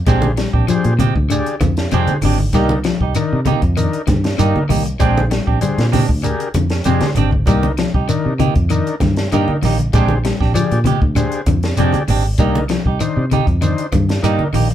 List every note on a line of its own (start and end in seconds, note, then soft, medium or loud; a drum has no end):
0.06 0.45 A#1 medium
0.06 0.26 G#3 medium
0.06 0.26 C4 medium
0.06 0.32 D4 medium
0.06 0.26 D4 medium
0.06 0.32 G4 medium
0.06 0.26 G4 medium
0.06 0.32 G#4 medium
0.06 0.32 C5 medium
0.06 kick medium
0.06 closed hi-hat medium
0.06 shekere medium
0.22 high conga medium
0.37 0.57 G3 medium
0.37 muted clean electric guitar stroke soft
0.37 snare medium
0.37 closed hi-hat soft
0.37 shekere soft
0.53 0.66 A#1 medium
0.53 0.67 C4 soft
0.53 0.68 D4 soft
0.53 0.67 G4 medium
0.53 kick medium
0.68 0.88 F3 medium
0.68 0.93 D4 medium
0.68 0.94 G4 medium
0.68 0.94 G#4 medium
0.68 0.94 C5 loud
0.68 muted clean electric guitar stroke soft
0.68 closed hi-hat medium
0.68 shekere medium
0.84 1.10 A#2 medium
0.84 muted clean electric guitar stroke soft
0.84 closed hi-hat soft
0.99 1.19 C3 medium
0.99 1.16 G#3 medium
0.99 1.16 C4 medium
0.99 1.15 G4 medium
0.99 closed hi-hat soft
0.99 high conga medium
0.99 low conga medium
0.99 shekere soft
1.16 1.41 D2 medium
1.16 muted clean electric guitar stroke soft
1.16 kick medium
1.30 1.50 D3 medium
1.30 1.56 D4 medium
1.30 1.56 G4 medium
1.30 1.56 G#4 medium
1.30 1.56 D5 medium
1.30 closed hi-hat medium
1.30 shekere medium
1.46 muted clean electric guitar stroke soft
1.46 closed hi-hat soft
1.61 1.86 F2 medium
1.61 1.81 D3 medium
1.61 muted clean electric guitar stroke soft
1.61 kick medium
1.61 closed hi-hat soft
1.61 high conga loud
1.61 shekere soft
1.77 muted clean electric guitar stroke soft
1.77 snare medium
1.77 closed hi-hat soft
1.91 2.06 F2 medium
1.91 2.12 C3 medium
1.91 2.12 G#3 medium
1.91 2.12 C4 medium
1.91 2.17 D4 medium
1.91 2.12 D4 medium
1.91 2.17 G4 medium
1.91 2.12 G4 medium
1.91 2.17 G#4 medium
1.91 2.17 C5 medium
1.91 closed hi-hat medium
1.91 shekere medium
2.07 muted fingered electric bass stroke soft
2.07 closed hi-hat soft
2.07 high conga medium
2.21 2.48 G#1 medium
2.21 2.43 D3 medium
2.21 2.40 G#3 medium
2.21 2.39 C4 medium
2.21 2.39 D4 medium
2.21 2.39 G4 medium
2.21 open hi-hat medium
2.21 low conga medium
2.21 shekere soft
2.39 muted clean electric guitar stroke soft
2.39 high conga medium
2.53 2.92 C2 medium
2.53 2.74 G3 medium
2.53 2.73 A#3 medium
2.53 2.79 D4 medium
2.53 2.79 D#4 medium
2.53 2.73 D#4 medium
2.53 2.74 G4 medium
2.53 2.79 A#4 medium
2.53 kick medium
2.53 snare soft
2.53 closed hi-hat medium
2.53 low conga medium
2.53 shekere medium
2.69 high conga medium
2.84 3.05 F3 medium
2.84 muted clean electric guitar stroke soft
2.84 snare medium
2.84 closed hi-hat soft
2.84 shekere soft
3.01 3.13 C2 medium
3.01 3.15 D#4 medium
3.01 3.15 G4 medium
3.01 kick medium
3.15 3.36 D#3 medium
3.15 3.40 D4 medium
3.15 3.40 D#4 medium
3.15 3.41 A#4 medium
3.15 closed hi-hat medium
3.15 shekere medium
3.33 3.57 C3 medium
3.33 muted clean electric guitar stroke soft
3.45 3.66 C3 medium
3.45 3.63 A#3 medium
3.45 3.63 D#4 medium
3.45 3.62 G4 medium
3.45 closed hi-hat soft
3.45 high conga medium
3.45 low conga medium
3.45 shekere soft
3.62 3.88 F2 loud
3.62 muted clean electric guitar stroke soft
3.62 kick medium
3.62 closed hi-hat soft
3.77 3.97 D#3 medium
3.77 4.02 D4 medium
3.77 4.02 D#4 medium
3.77 4.02 A#4 medium
3.77 closed hi-hat medium
3.77 shekere medium
3.93 muted clean electric guitar stroke soft
3.93 closed hi-hat soft
4.07 4.33 G2 medium
4.07 4.27 D#3 medium
4.07 muted clean electric guitar stroke soft
4.07 kick medium
4.07 snare soft
4.07 closed hi-hat soft
4.07 high conga medium
4.07 shekere soft
4.24 muted clean electric guitar stroke soft
4.24 snare medium
4.24 closed hi-hat soft
4.38 4.52 G2 medium
4.38 4.58 D3 medium
4.38 4.58 A#3 medium
4.38 4.63 D4 medium
4.38 4.64 D#4 medium
4.38 4.58 D#4 medium
4.38 4.58 G4 medium
4.38 4.64 A#4 loud
4.38 closed hi-hat medium
4.38 shekere medium
4.55 muted fingered electric bass stroke soft
4.55 high conga medium
4.69 4.95 C2 medium
4.69 4.89 D#3 medium
4.69 4.86 A#3 medium
4.69 4.85 D#4 medium
4.69 4.84 G4 medium
4.69 open hi-hat medium
4.69 low conga medium
4.69 shekere soft
4.86 muted clean electric guitar stroke medium
4.86 closed hi-hat soft
4.99 5.39 A#1 medium
4.99 5.20 G#3 medium
4.99 5.20 C4 medium
4.99 5.25 D4 medium
4.99 5.20 D4 medium
4.99 5.25 G4 medium
4.99 5.20 G4 medium
4.99 5.25 G#4 medium
4.99 5.25 C5 medium
4.99 kick medium
4.99 closed hi-hat medium
4.99 shekere medium
5.17 high conga medium
5.31 5.51 G3 medium
5.31 muted clean electric guitar stroke soft
5.31 snare medium
5.31 closed hi-hat medium
5.31 shekere soft
5.47 5.59 A#1 medium
5.47 5.61 C4 soft
5.47 5.61 D4 medium
5.47 5.61 G4 medium
5.47 kick medium
5.61 5.82 G3 medium
5.61 5.87 D4 medium
5.61 5.86 G4 medium
5.61 5.87 G#4 medium
5.61 5.87 C5 medium
5.61 muted clean electric guitar stroke soft
5.61 closed hi-hat medium
5.61 high conga medium
5.61 shekere medium
5.78 6.03 A#2 medium
5.78 muted clean electric guitar stroke soft
5.78 snare medium
5.78 closed hi-hat soft
5.92 6.13 C3 medium
5.92 6.09 G#3 medium
5.92 6.08 C4 medium
5.92 6.09 D4 medium
5.92 6.08 G4 medium
5.92 snare soft
5.92 open hi-hat medium
5.92 high conga medium
5.92 low conga medium
5.92 shekere soft
6.09 6.34 D2 medium
6.09 muted clean electric guitar stroke soft
6.09 kick medium
6.23 6.43 D3 medium
6.23 6.48 D4 medium
6.23 6.49 G4 medium
6.23 6.49 G#4 medium
6.23 6.49 A#4 medium
6.23 closed hi-hat medium
6.23 shekere medium
6.40 muted clean electric guitar stroke soft
6.40 closed hi-hat soft
6.54 6.80 F2 medium
6.54 6.75 D3 medium
6.54 muted clean electric guitar stroke soft
6.54 closed hi-hat medium
6.54 high conga medium
6.54 shekere soft
6.70 muted clean electric guitar stroke soft
6.70 snare medium
6.70 closed hi-hat soft
6.84 6.99 F2 medium
6.84 7.06 C3 medium
6.84 7.05 G#3 medium
6.84 7.05 C4 medium
6.84 7.10 D4 medium
6.84 7.10 G4 medium
6.84 7.05 G4 medium
6.84 7.10 G#4 medium
6.84 7.11 C5 medium
6.84 muted clean electric guitar stroke medium
6.84 closed hi-hat medium
6.84 shekere medium
7.01 muted fingered electric bass stroke soft
7.01 snare medium
7.01 closed hi-hat soft
7.01 high conga medium
7.15 7.42 G#1 medium
7.15 7.37 D3 medium
7.15 7.33 G#3 medium
7.15 7.32 C4 medium
7.15 7.32 D4 medium
7.15 7.32 G4 medium
7.15 closed hi-hat medium
7.15 low conga medium
7.15 shekere soft
7.31 muted clean electric guitar stroke soft
7.31 kick medium
7.31 high conga medium
7.46 7.85 C2 medium
7.46 7.68 G3 medium
7.46 7.66 A#3 medium
7.46 7.72 D4 medium
7.46 7.72 D#4 medium
7.46 7.67 G4 medium
7.46 7.72 A#4 medium
7.46 muted clean electric guitar stroke medium
7.46 kick medium
7.46 closed hi-hat medium
7.46 low conga medium
7.46 shekere medium
7.63 high conga medium
7.78 7.98 F3 medium
7.78 muted clean electric guitar stroke soft
7.78 snare medium
7.78 closed hi-hat soft
7.78 shekere soft
7.94 8.06 C2 medium
7.94 8.09 D#4 soft
7.94 8.09 G4 medium
7.94 kick medium
8.08 8.29 D#3 medium
8.08 8.33 D4 medium
8.08 8.34 D#4 medium
8.08 8.34 A#4 medium
8.08 muted clean electric guitar stroke soft
8.08 closed hi-hat medium
8.08 shekere medium
8.25 8.51 C3 medium
8.25 muted clean electric guitar stroke soft
8.39 8.59 C3 medium
8.39 8.56 A#3 medium
8.39 8.55 D#4 medium
8.39 8.55 G4 medium
8.39 closed hi-hat soft
8.39 high conga medium
8.39 low conga medium
8.39 shekere soft
8.55 8.81 F2 medium
8.55 muted clean electric guitar stroke soft
8.55 kick medium
8.55 closed hi-hat soft
8.70 8.90 D#3 medium
8.70 8.95 D4 medium
8.70 8.95 D#4 medium
8.70 8.96 A#4 medium
8.70 closed hi-hat medium
8.70 shekere medium
8.87 muted clean electric guitar stroke soft
8.87 closed hi-hat soft
9.00 9.27 G2 medium
9.00 9.21 D#3 medium
9.00 muted clean electric guitar stroke soft
9.00 kick medium
9.00 snare soft
9.00 closed hi-hat soft
9.00 high conga medium
9.00 shekere soft
9.16 muted clean electric guitar stroke soft
9.16 snare medium
9.16 closed hi-hat soft
9.32 9.46 G2 medium
9.32 9.52 D3 medium
9.32 9.52 A#3 medium
9.32 9.57 D4 medium
9.32 9.57 D#4 medium
9.32 9.52 D#4 medium
9.32 9.52 G4 medium
9.32 9.57 A#4 medium
9.32 closed hi-hat medium
9.32 shekere medium
9.48 muted fingered electric bass stroke soft
9.48 high conga medium
9.62 9.88 A#1 medium
9.62 9.82 D#3 medium
9.62 9.80 A#3 medium
9.62 9.79 D#4 medium
9.62 9.79 G4 medium
9.62 snare soft
9.62 open hi-hat medium
9.62 low conga medium
9.62 shekere soft
9.78 muted clean electric guitar stroke soft
9.78 closed hi-hat soft
9.78 high conga medium
9.93 10.32 A#1 medium
9.93 10.13 G#3 medium
9.93 10.13 C4 medium
9.93 10.18 D4 medium
9.93 10.14 D4 medium
9.93 10.18 G4 medium
9.93 10.14 G4 medium
9.93 10.19 G#4 medium
9.93 10.19 C5 medium
9.93 kick medium
9.93 closed hi-hat medium
9.93 shekere medium
10.09 high conga medium
10.25 10.44 G3 medium
10.25 muted clean electric guitar stroke soft
10.25 snare medium
10.25 closed hi-hat medium
10.25 shekere soft
10.40 10.53 A#1 medium
10.40 10.54 C4 soft
10.40 10.54 D4 medium
10.40 10.54 G4 medium
10.40 kick medium
10.40 snare soft
10.54 10.75 F3 medium
10.54 10.80 D4 medium
10.54 10.80 G4 medium
10.54 10.80 G#4 medium
10.54 10.80 D5 medium
10.54 muted clean electric guitar stroke soft
10.54 closed hi-hat medium
10.54 high conga medium
10.54 shekere medium
10.71 10.97 A#2 medium
10.71 muted clean electric guitar stroke soft
10.71 closed hi-hat soft
10.84 11.05 C3 medium
10.84 11.02 G#3 medium
10.84 11.01 G4 medium
10.84 muted clean electric guitar stroke medium
10.84 closed hi-hat medium
10.84 high conga medium
10.84 low conga medium
10.84 shekere soft
11.02 11.27 D2 loud
11.02 muted clean electric guitar stroke soft
11.02 kick medium
11.15 11.36 D3 medium
11.15 11.41 D4 medium
11.15 11.41 G4 medium
11.15 11.41 G#4 medium
11.15 11.42 C5 loud
11.15 closed hi-hat medium
11.15 low conga medium
11.15 shekere medium
11.32 muted clean electric guitar stroke soft
11.32 closed hi-hat soft
11.46 11.72 F2 medium
11.46 11.68 D3 medium
11.46 muted clean electric guitar stroke soft
11.46 kick medium
11.46 closed hi-hat medium
11.46 high conga medium
11.46 shekere soft
11.63 muted clean electric guitar stroke soft
11.63 snare medium
11.63 closed hi-hat soft
11.77 11.92 F2 medium
11.77 11.98 C3 medium
11.77 11.98 G#3 medium
11.77 11.98 C4 medium
11.77 12.02 D4 medium
11.77 11.98 D4 medium
11.77 12.03 G4 medium
11.77 11.98 G4 medium
11.77 12.03 G#4 medium
11.77 12.03 D5 medium
11.77 closed hi-hat medium
11.77 shekere medium
11.93 muted fingered electric bass stroke soft
11.93 closed hi-hat soft
11.93 high conga medium
12.08 12.34 G#1 medium
12.08 12.25 G#3 medium
12.08 12.25 C4 medium
12.08 12.25 D4 medium
12.08 12.26 G4 medium
12.08 muted clean electric guitar stroke medium
12.08 open hi-hat medium
12.08 low conga medium
12.08 shekere soft
12.26 muted clean electric guitar stroke soft
12.38 12.77 C2 loud
12.38 12.59 G3 medium
12.38 12.59 A#3 medium
12.38 12.64 D4 medium
12.38 12.64 D#4 medium
12.38 12.59 D#4 medium
12.38 12.59 G4 medium
12.38 12.64 A#4 medium
12.38 kick loud
12.38 closed hi-hat medium
12.38 low conga medium
12.38 shekere medium
12.55 high conga medium
12.69 12.90 F3 medium
12.69 muted clean electric guitar stroke soft
12.69 snare medium
12.69 closed hi-hat medium
12.69 shekere soft
12.86 12.98 C2 medium
12.86 13.01 D#4 soft
12.86 13.01 G4 medium
12.86 kick medium
13.00 13.20 D#3 medium
13.00 13.25 D4 medium
13.00 13.25 D#4 medium
13.00 13.26 C5 medium
13.00 muted clean electric guitar stroke soft
13.00 closed hi-hat medium
13.00 shekere medium
13.17 13.42 C3 medium
13.17 muted clean electric guitar stroke soft
13.31 13.51 C3 medium
13.31 13.48 D#4 medium
13.31 13.47 G4 loud
13.31 muted clean electric guitar stroke medium
13.31 closed hi-hat soft
13.31 high conga medium
13.31 low conga medium
13.31 shekere soft
13.47 13.72 F2 medium
13.47 kick medium
13.47 closed hi-hat soft
13.61 13.82 D#3 medium
13.61 13.86 D4 medium
13.61 13.87 D#4 medium
13.61 13.87 C5 medium
13.61 closed hi-hat medium
13.61 high conga medium
13.61 shekere medium
13.78 muted clean electric guitar stroke soft
13.78 closed hi-hat soft
13.92 14.18 G2 medium
13.92 14.13 D#3 medium
13.92 muted clean electric guitar stroke soft
13.92 kick medium
13.92 closed hi-hat soft
13.92 high conga medium
13.92 shekere soft
14.09 muted clean electric guitar stroke soft
14.09 snare medium
14.09 closed hi-hat soft
14.22 14.37 G2 medium
14.22 14.44 D3 medium
14.22 14.43 A#3 medium
14.22 14.48 D4 medium
14.22 14.48 D#4 medium
14.22 14.43 D#4 medium
14.22 14.43 G4 medium
14.22 14.48 A#4 medium
14.22 closed hi-hat medium
14.22 shekere medium
14.39 muted fingered electric bass stroke soft
14.39 high conga medium
14.53 14.74 A#1 medium
14.53 14.74 D#3 medium
14.53 14.71 A#3 medium
14.53 14.70 D#4 medium
14.53 14.69 G4 medium
14.53 open hi-hat medium
14.53 low conga medium
14.53 shekere soft
14.70 muted clean electric guitar stroke soft
14.70 closed hi-hat soft